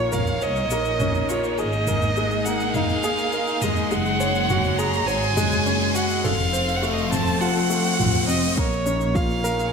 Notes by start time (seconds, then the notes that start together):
Already playing: A#1 A#3 D#4 F4 G#4 C#5, riser
0.12 A#4 F5, mid tom, shaker
0.27 shaker
0.41 C2 C#5 D#5, shaker
0.56 shaker
0.70 A#1 A#3, shaker
0.85 shaker
1.00 C#4, mid tom, shaker
1.15 shaker
1.29 F4 C#5, shaker
1.44 shaker
1.58 G#1 G#4 D#5, shaker
1.73 shaker
1.87 A#4, mid tom, shaker
2.02 shaker
2.16 G#3, shaker
2.31 shaker
2.45 A#3 F#5, shaker
2.57 C6, shaker
2.74 D#4 F5, mid tom, shaker
2.89 shaker
3.03 G#4, shaker
3.18 shaker
3.32 A#4, shaker
3.47 shaker
3.61 G#3 D#5, mid tom, shaker
3.76 shaker
3.90 F#1 G#3 F#5, shaker
4.06 shaker
4.20 C#5, shaker
4.35 shaker
4.49 F#4, mid tom, shaker
4.64 shaker
4.78 G#4 A#5, shaker
4.93 shaker
5.07 G#1 C#5 G#5, shaker
5.23 shaker
5.37 F#1 G#3, mid tom, shaker
5.52 shaker
5.66 C#4, shaker
5.81 shaker
5.95 F#4 F#5, shaker
6.10 shaker
6.24 F1 C4 A4 F5, mid tom, shaker
6.39 A4, shaker
6.48 F3
6.53 C5, shaker
6.68 shaker
6.76 F#5
6.82 A3 F5, shaker
6.93 D#5
6.98 shaker
7.02 F5
7.11 C4 A5, mid tom, shaker
7.27 shaker
7.40 F4 F#5, shaker
7.56 shaker
7.69 A3, shaker
7.85 shaker
7.99 A1 F4, mid tom, shaker
8.14 shaker
8.27 F1 C4 D#5, shaker
8.44 shaker
8.57 A#1 A#3 C#5, kick, shaker
8.72 shaker
8.80 C#5
8.86 C#4, shaker
8.92 D#4
9.01 shaker
9.15 F4 F5, kick, shaker
9.30 G#4, shaker
9.44 A#4, shaker
9.59 shaker